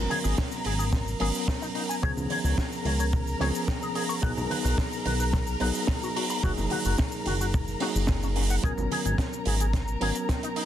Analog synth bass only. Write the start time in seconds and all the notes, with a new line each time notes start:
0.25 G#1
0.66 G#1
1.21 G#1
2.03 C#2
2.17 C#2
2.44 C#2
2.85 C#2
3.40 C#2
4.23 B1
4.37 B1
4.65 B1
5.06 B1
5.61 B1
6.43 F#1
6.58 F#1
6.85 F#1
7.26 F#1
7.96 F#1
8.64 G#1
8.78 G#1
9.05 G#1
9.46 G#1
10.01 G#1